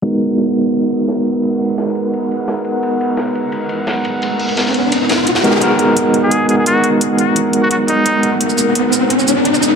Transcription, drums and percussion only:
0.03 closed hi-hat medium
0.03 ride medium
0.22 ride medium
0.38 snare loud
0.38 ride medium
0.47 snare soft
0.55 ride medium
0.73 closed hi-hat medium
0.73 ride medium
0.90 closed hi-hat medium
0.90 ride medium
1.08 snare loud
1.08 closed hi-hat medium
1.08 ride medium
1.26 closed hi-hat medium
1.26 ride medium
1.43 closed hi-hat medium
1.43 ride medium
1.60 closed hi-hat medium
1.60 open hi-hat medium
1.69 ride soft
1.78 snare loud
1.78 closed hi-hat medium
1.78 ride medium
1.86 snare medium
1.95 closed hi-hat medium
1.95 ride medium
2.13 closed hi-hat medium
2.13 ride medium
2.30 closed hi-hat medium
2.30 ride medium
2.48 snare loud
2.48 closed hi-hat medium
2.48 ride medium
2.57 ride soft
2.64 closed hi-hat medium
2.64 ride medium
2.82 closed hi-hat medium
2.82 ride medium
3.00 closed hi-hat medium
3.00 ride medium
3.17 snare loud
3.17 closed hi-hat medium
3.17 ride medium
3.26 snare soft
3.35 closed hi-hat medium
3.35 ride medium
3.52 closed hi-hat medium
3.52 ride medium
3.69 closed hi-hat medium
3.69 ride medium
3.87 snare loud
3.87 closed hi-hat medium
3.87 ride medium
4.05 closed hi-hat medium
4.05 ride medium
4.22 closed hi-hat medium
4.22 ride medium
4.39 closed hi-hat medium
4.39 open hi-hat medium
4.49 ride soft
4.57 snare loud
4.57 closed hi-hat medium
4.57 ride medium
4.66 snare medium
4.74 closed hi-hat medium
4.74 ride medium
4.92 closed hi-hat medium
4.92 ride medium
5.09 snare loud
5.09 closed hi-hat medium
5.09 ride medium
5.27 closed hi-hat medium
5.27 ride medium
5.35 snare medium
5.35 ride medium
5.44 closed hi-hat medium
5.53 ride medium
5.62 kick medium
5.62 closed hi-hat medium
5.79 closed hi-hat medium
5.97 kick loud
5.97 closed hi-hat medium
6.14 closed hi-hat medium
6.31 kick loud
6.31 closed hi-hat loud
6.49 closed hi-hat medium
6.66 kick medium
6.66 closed hi-hat medium
6.84 closed hi-hat medium
7.01 kick loud
7.01 closed hi-hat medium
7.18 closed hi-hat medium
7.36 kick loud
7.36 closed hi-hat medium
7.53 closed hi-hat medium
7.71 kick loud
7.71 closed hi-hat loud
7.88 closed hi-hat medium
8.06 kick loud
8.06 closed hi-hat medium
8.23 closed hi-hat medium
8.41 kick loud
8.41 closed hi-hat medium
8.50 shaker soft
8.58 closed hi-hat medium
8.58 shaker medium
8.75 kick loud
8.75 closed hi-hat medium
8.93 closed hi-hat medium
8.93 shaker medium
9.10 kick loud
9.10 closed hi-hat medium
9.19 shaker soft
9.28 closed hi-hat medium
9.28 shaker medium
9.45 kick loud
9.45 closed hi-hat medium
9.54 shaker soft
9.63 closed hi-hat medium
9.63 shaker medium

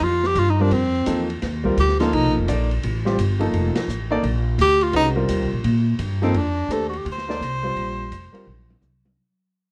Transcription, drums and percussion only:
0.00 ride medium
0.24 snare soft
0.36 hi-hat pedal soft
0.36 ride medium
0.71 ride medium
1.06 hi-hat pedal medium
1.06 ride medium
1.30 ride medium
1.42 snare soft
1.42 ride medium
1.65 kick medium
1.77 hi-hat pedal medium
1.77 ride medium
1.89 snare soft
2.00 snare medium
2.00 ride medium
2.13 ride medium
2.48 hi-hat pedal medium
2.48 ride medium
2.71 ride soft
2.83 ride medium
3.06 snare soft
3.19 hi-hat pedal medium
3.19 ride medium
3.41 ride medium
3.54 ride medium
3.76 snare medium
3.76 ride medium
3.89 hi-hat pedal medium
4.23 ride medium
4.59 hi-hat pedal medium
4.59 ride medium
4.81 ride medium
4.93 ride medium
5.29 hi-hat pedal medium
5.29 ride medium
5.64 ride medium
5.99 hi-hat pedal soft
5.99 ride medium
6.34 ride medium
6.70 hi-hat pedal medium
6.70 ride medium
6.93 ride soft
7.06 ride medium
7.18 snare soft
7.30 snare soft
7.42 hi-hat pedal soft
7.42 ride medium
7.76 ride medium
8.12 hi-hat pedal medium
8.12 ride medium
8.35 ride soft
8.47 high tom soft
8.70 high tom medium
8.82 hi-hat pedal medium
8.82 high tom medium
9.05 high tom medium

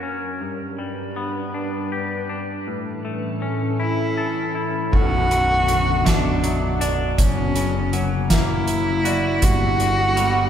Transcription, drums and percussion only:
4.93 kick medium
4.93 crash medium
5.31 closed hi-hat soft
5.68 closed hi-hat soft
6.06 kick medium
6.06 snare medium
6.06 closed hi-hat medium
6.44 closed hi-hat medium
6.81 closed hi-hat medium
7.18 kick medium
7.18 closed hi-hat medium
7.56 closed hi-hat soft
7.93 closed hi-hat soft
8.30 kick medium
8.30 snare medium
8.30 closed hi-hat medium
8.67 closed hi-hat medium
9.05 closed hi-hat soft
9.42 kick medium
9.42 closed hi-hat medium
9.80 closed hi-hat soft
10.17 closed hi-hat soft

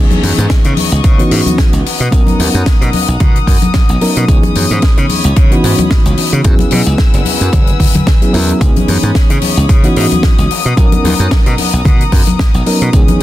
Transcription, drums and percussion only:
0.11 closed hi-hat soft
0.11 high conga loud
0.23 open hi-hat loud
0.38 closed hi-hat medium
0.50 kick loud
0.50 snare loud
0.50 closed hi-hat loud
0.64 closed hi-hat medium
0.77 open hi-hat loud
0.77 high conga medium
0.93 closed hi-hat medium
1.04 kick loud
1.04 closed hi-hat medium
1.19 closed hi-hat soft
1.31 open hi-hat loud
1.46 closed hi-hat medium
1.46 high conga medium
1.58 kick loud
1.58 snare loud
1.58 closed hi-hat medium
1.73 closed hi-hat medium
1.86 open hi-hat loud
2.00 closed hi-hat medium
2.12 kick loud
2.12 closed hi-hat medium
2.27 closed hi-hat soft
2.27 high conga medium
2.40 open hi-hat loud
2.54 closed hi-hat soft
2.66 kick loud
2.66 snare loud
2.66 closed hi-hat loud
2.82 closed hi-hat soft
2.93 open hi-hat loud
2.93 high conga medium
3.09 closed hi-hat medium
3.20 kick loud
3.20 closed hi-hat medium
3.20 low conga medium
3.36 closed hi-hat soft
3.47 kick medium
3.47 open hi-hat loud
3.62 closed hi-hat medium
3.62 high conga medium
3.74 kick loud
3.74 snare loud
3.74 closed hi-hat medium
3.89 closed hi-hat medium
4.01 open hi-hat loud
4.16 closed hi-hat medium
4.28 kick loud
4.28 closed hi-hat medium
4.43 closed hi-hat soft
4.43 high conga medium
4.55 open hi-hat loud
4.70 closed hi-hat soft
4.82 kick loud
4.82 snare loud
4.82 closed hi-hat medium
4.97 closed hi-hat medium
5.09 open hi-hat loud
5.09 high conga medium
5.24 closed hi-hat medium
5.36 kick loud
5.36 closed hi-hat medium
5.52 closed hi-hat medium
5.64 open hi-hat loud
5.79 closed hi-hat soft
5.79 high conga loud
5.91 kick loud
5.91 snare loud
5.91 closed hi-hat medium
6.05 closed hi-hat soft
6.17 open hi-hat loud
6.33 closed hi-hat medium
6.44 kick loud
6.44 closed hi-hat medium
6.59 closed hi-hat soft
6.59 high conga medium
6.71 open hi-hat loud
6.86 closed hi-hat medium
6.98 kick loud
6.98 snare loud
6.98 closed hi-hat medium
7.14 closed hi-hat medium
7.25 open hi-hat loud
7.25 high conga medium
7.41 closed hi-hat medium
7.53 kick loud
7.53 closed hi-hat medium
7.53 low conga medium
7.67 closed hi-hat soft
7.80 kick medium
7.80 open hi-hat loud
7.80 low conga medium
7.94 closed hi-hat medium
7.94 high conga medium
7.94 low conga medium
8.07 kick loud
8.07 snare loud
8.07 closed hi-hat medium
8.22 closed hi-hat soft
8.34 open hi-hat medium
8.49 closed hi-hat medium
8.61 kick loud
8.61 closed hi-hat medium
8.76 closed hi-hat soft
8.76 high conga medium
8.88 open hi-hat medium
9.03 closed hi-hat soft
9.15 kick loud
9.15 snare loud
9.15 closed hi-hat medium
9.30 closed hi-hat medium
9.42 open hi-hat loud
9.42 high conga medium
9.58 closed hi-hat soft
9.69 kick loud
9.69 closed hi-hat loud
9.84 closed hi-hat medium
9.96 open hi-hat loud
10.11 closed hi-hat soft
10.11 high conga medium
10.23 kick loud
10.23 snare loud
10.23 closed hi-hat medium
10.38 closed hi-hat medium
10.51 open hi-hat loud
10.64 closed hi-hat soft
10.77 kick loud
10.77 closed hi-hat loud
10.92 closed hi-hat medium
10.92 high conga medium
11.05 open hi-hat loud
11.19 closed hi-hat medium
11.31 kick loud
11.31 snare loud
11.31 closed hi-hat medium
11.46 closed hi-hat medium
11.58 open hi-hat loud
11.58 high conga medium
11.73 closed hi-hat medium
11.85 kick loud
11.85 closed hi-hat medium
11.85 low conga medium
12.01 closed hi-hat medium
12.12 kick medium
12.12 open hi-hat loud
12.27 closed hi-hat medium
12.27 high conga medium
12.39 kick loud
12.39 snare loud
12.39 closed hi-hat medium
12.54 closed hi-hat medium
12.66 open hi-hat loud
12.81 closed hi-hat medium
12.93 kick loud
12.93 closed hi-hat medium
13.08 closed hi-hat medium
13.08 high conga medium

